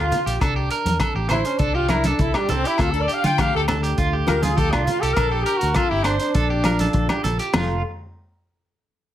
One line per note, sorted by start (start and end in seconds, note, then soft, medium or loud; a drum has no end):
0.00 0.10 D2 medium
0.00 0.12 A2 medium
0.00 0.39 C4 medium
0.00 0.26 F4 medium
0.00 0.41 F4 medium
0.00 0.38 G4 medium
0.11 0.40 A#2 medium
0.11 closed hi-hat medium
0.11 low conga medium
0.26 0.39 A#1 medium
0.26 0.41 G4 medium
0.26 closed hi-hat medium
0.41 0.68 C2 loud
0.41 0.95 C3 medium
0.41 1.30 D4 medium
0.41 0.56 A4 medium
0.41 kick medium
0.41 cross-stick medium
0.41 closed hi-hat medium
0.41 low agogo medium
0.56 0.70 G4 medium
0.70 1.00 A#4 medium
0.70 closed hi-hat soft
0.85 0.99 E2 medium
0.85 closed hi-hat medium
0.85 high conga medium
0.99 1.54 E3 medium
0.99 2.76 C4 medium
0.99 1.15 A4 medium
0.99 kick medium
0.99 cross-stick medium
0.99 closed hi-hat medium
0.99 low agogo medium
1.15 1.41 A1 medium
1.15 1.29 G4 medium
1.29 1.89 D4 medium
1.29 1.46 E4 medium
1.29 1.59 C5 medium
1.29 cross-stick medium
1.29 closed hi-hat soft
1.29 low conga medium
1.29 low agogo medium
1.45 1.60 C#4 medium
1.45 closed hi-hat soft
1.58 2.12 C2 loud
1.58 2.13 G2 medium
1.58 1.75 D4 medium
1.58 1.74 A4 medium
1.58 kick medium
1.58 closed hi-hat soft
1.75 1.90 F4 medium
1.75 1.89 G4 medium
1.89 2.78 D4 medium
1.89 2.05 E4 medium
1.89 2.04 A#4 medium
1.89 cross-stick medium
1.89 closed hi-hat medium
1.89 high conga medium
1.89 low agogo medium
2.04 2.21 D4 medium
2.04 2.34 A4 medium
2.04 closed hi-hat medium
2.04 high conga medium
2.19 2.33 C2 loud
2.19 2.73 E3 medium
2.19 2.35 E4 medium
2.19 kick medium
2.19 closed hi-hat soft
2.34 2.51 G3 medium
2.34 2.49 G4 medium
2.34 cross-stick medium
2.34 low agogo medium
2.49 2.63 C2 medium
2.49 2.66 C4 medium
2.49 2.64 A4 medium
2.49 closed hi-hat medium
2.49 low conga medium
2.64 2.80 E4 medium
2.64 2.78 G4 medium
2.64 closed hi-hat soft
2.78 3.05 D2 loud
2.78 3.33 D3 medium
2.78 2.94 C4 medium
2.78 2.90 F4 medium
2.78 3.08 A4 loud
2.78 kick medium
2.78 cross-stick medium
2.78 closed hi-hat soft
2.78 low agogo medium
2.91 3.68 D4 medium
2.91 3.00 A4 medium
3.02 3.11 D5 medium
3.08 3.23 G4 medium
3.08 closed hi-hat soft
3.13 3.26 F5 loud
3.24 3.51 D3 loud
3.24 3.38 F4 medium
3.24 3.40 G5 loud
3.24 closed hi-hat soft
3.24 high conga medium
3.38 3.92 F3 medium
3.38 5.14 A3 medium
3.38 3.67 G4 medium
3.38 3.55 F5 medium
3.38 kick medium
3.38 cross-stick medium
3.38 closed hi-hat medium
3.38 low agogo medium
3.55 3.93 D2 medium
3.55 3.64 A4 loud
3.68 5.14 D4 medium
3.68 3.83 A4 medium
3.68 cross-stick medium
3.68 closed hi-hat soft
3.68 low conga medium
3.68 low agogo medium
3.83 3.97 G4 medium
3.83 closed hi-hat soft
3.98 4.24 D2 loud
3.98 4.52 A2 medium
3.98 4.13 F4 medium
3.98 kick medium
3.98 closed hi-hat medium
4.13 4.41 G4 medium
4.27 4.74 D2 loud
4.27 6.63 F4 medium
4.27 4.42 A#4 medium
4.27 cross-stick medium
4.27 closed hi-hat soft
4.27 high conga medium
4.27 low agogo medium
4.42 4.57 F4 medium
4.42 4.57 G#4 medium
4.42 closed hi-hat medium
4.42 high conga medium
4.55 5.10 F3 medium
4.55 4.72 G4 medium
4.55 4.72 A4 loud
4.55 kick loud
4.55 closed hi-hat medium
4.71 4.86 C2 medium
4.71 4.87 D4 medium
4.71 5.01 F4 medium
4.71 cross-stick medium
4.71 low agogo medium
4.84 5.01 F4 loud
4.84 closed hi-hat soft
4.84 low conga medium
5.01 5.15 C2 medium
5.01 5.16 G4 medium
5.01 5.16 A4 medium
5.01 closed hi-hat medium
5.14 5.43 A#1 loud
5.14 5.70 A#2 medium
5.14 6.04 D4 medium
5.14 5.31 A4 medium
5.14 5.31 A#4 loud
5.14 kick medium
5.14 cross-stick medium
5.14 closed hi-hat medium
5.14 low agogo medium
5.29 5.46 G4 medium
5.29 5.45 A4 medium
5.43 5.60 G4 loud
5.43 5.75 A#4 medium
5.43 closed hi-hat medium
5.58 5.74 F#4 medium
5.58 closed hi-hat medium
5.63 5.75 D2 loud
5.74 6.29 F3 medium
5.74 7.50 C4 medium
5.74 5.90 F4 medium
5.74 5.91 A4 medium
5.74 kick medium
5.74 cross-stick medium
5.74 closed hi-hat medium
5.74 low agogo medium
5.90 6.17 G1 loud
5.90 6.05 E4 medium
5.90 6.05 G4 medium
6.03 6.19 D4 medium
6.03 7.50 D4 medium
6.03 6.34 C5 medium
6.03 cross-stick medium
6.03 closed hi-hat medium
6.03 low agogo medium
6.19 7.35 D4 medium
6.19 closed hi-hat soft
6.34 6.87 A#1 loud
6.34 6.88 F2 medium
6.34 6.50 A4 medium
6.34 kick loud
6.34 closed hi-hat medium
6.50 6.64 G4 medium
6.64 7.55 F4 medium
6.64 6.80 A#4 medium
6.64 cross-stick medium
6.64 closed hi-hat medium
6.64 high conga medium
6.64 low agogo medium
6.79 7.08 A4 medium
6.79 closed hi-hat medium
6.79 high conga medium
6.93 7.08 A#1 loud
6.93 7.47 F3 medium
6.93 kick medium
6.93 closed hi-hat soft
7.09 7.24 G4 medium
7.09 cross-stick medium
7.09 high conga medium
7.09 low agogo medium
7.24 7.38 A#1 loud
7.24 7.38 A4 medium
7.24 closed hi-hat medium
7.24 low conga medium
7.39 7.53 G4 medium
7.39 closed hi-hat medium
7.53 7.82 F1 loud
7.53 7.80 F2 medium
7.53 7.80 F3 medium
7.53 7.81 A3 medium
7.53 7.81 C4 medium
7.53 7.81 F4 medium
7.53 7.82 A4 medium
7.53 snare medium
7.53 floor tom medium
7.53 ride bell medium
7.53 high conga medium
7.53 low agogo loud